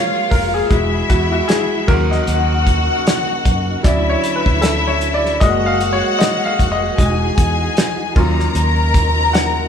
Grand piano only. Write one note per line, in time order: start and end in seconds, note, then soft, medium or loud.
0.00 0.67 G#3 medium
0.00 0.67 A#3 soft
0.00 0.67 F4 medium
0.00 0.32 C#5 medium
0.31 0.55 A#4 medium
0.54 1.12 G#4 medium
0.70 1.84 G#3 soft
0.70 1.84 E4 soft
0.70 1.08 F#4 medium
1.10 1.31 F#4 medium
1.32 1.49 F#4 medium
1.48 1.89 G#4 medium
1.87 3.80 F#3 medium
1.87 3.80 C#4 soft
1.87 3.80 F#4 medium
1.87 2.09 A#4 medium
2.11 2.86 D#5 medium
3.83 5.37 F#3 soft
3.83 5.37 C#4 soft
3.83 5.37 E4 medium
3.83 4.11 D5 medium
4.09 4.37 C#5 medium
4.36 4.61 B4 medium
4.61 4.89 A4 medium
4.87 5.13 C#5 medium
5.14 5.39 D5 loud
5.40 6.55 G#3 medium
5.40 6.55 A#3 medium
5.40 6.56 F#4 medium
5.40 5.68 D#5 loud
5.66 5.94 F5 loud
5.93 6.20 C#5 medium
6.19 6.46 D#5 medium
6.45 6.73 F5 medium
6.72 7.46 D#5 medium
6.97 8.12 G#3 medium
6.97 8.12 D#4 soft
6.97 8.13 F#4 medium
8.15 8.70 F#3 medium
8.15 8.71 C#4 medium
8.15 8.71 F4 medium
9.33 9.68 F#5 medium